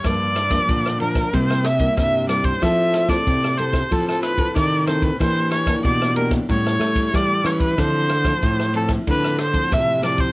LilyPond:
<<
  \new Staff \with { instrumentName = "Erhu" } { \time 4/4 \key f \lydian \tempo 4 = 93 d''4. bes'8 c''8 e''8 e''8 d''16 c''16 | e''8. d''8. c''8 a'16 a'16 b'8 d''8 c''16 b'16 | c''8 des''8 d''8 bes'8 cis''4 d''8 cis''16 b'16 | c''4. a'8 b'8 c''8 e''8 d''16 c''16 | }
  \new Staff \with { instrumentName = "Nylon-string guitar" } { \time 4/4 \key f \lydian << { <f bes d'>8 r16 <f bes d'>8. <f bes d'>8 <g bes e'>8 r16 <g bes e'>8. <g bes e'>8 | <c' e' a'>8. <c' e' a'>8. <c' e' a'>16 r16 <c' e' a'>8. <c' e' a'>8. <c' e' a'>8 | <bes d' g'>8. <bes d' g'>8. <bes d' g'>8 <g cis' e'>8. <g cis' e'>8. <g cis' e'>8 | <f c' e'>8 r16 <f c' e'>8. <f c' e'>8 <f c' e'>8 r16 <f c' e'>8. <f c' e'>8 | } \\ { g,4 d4 c4 g,4 | f4 c4 f4 c4 | e4 e4 a,4 e4 | d4 a,4 d4 a,4 | } >> }
  \new Staff \with { instrumentName = "Nylon-string guitar" } { \clef bass \time 4/4 \key f \lydian g,4 bes,4 c4 c4 | f4 c4 f4 ees4 | e4 b,4 a,8 a8 g8 e8 | d4 a,4 d4 c4 | }
  \new DrumStaff \with { instrumentName = "Drums" } \drummode { \time 4/4 <bd cymr ss>8 <cymr ss>16 <bd cymr ss>16 <bd cymr>16 ss16 cymr16 <bd cymr ss>16 <bd cymr>16 ss16 <cymr ss>16 <bd cymr>16 <bd cymr ss>8 <cymr ss>16 <bd cymr>16 | <bd cymr ss>8 <cymr ss>16 <bd cymr ss>16 <bd cymr>16 ss16 cymr16 <bd cymr ss>16 <bd cymr>16 ss16 <cymr ss>16 <bd cymr>16 <bd cymr ss>8 <cymr ss>16 <bd cymr>16 | <bd cymr ss>8 <cymr ss>16 <bd cymr ss>16 <bd cymr>16 ss16 cymr16 <bd cymr ss>16 <bd cymr>16 ss16 <cymr ss>16 <bd cymr>16 <bd cymr ss>8 <cymr ss>16 <bd cymr>16 | <bd cymr ss>8 <cymr ss>16 <bd cymr ss>16 <bd cymr>16 ss16 cymr16 <bd cymr ss>16 <bd cymr>16 ss16 <cymr ss>16 <bd cymr>16 <bd cymr ss>8 <cymr ss>16 <bd cymr>16 | }
>>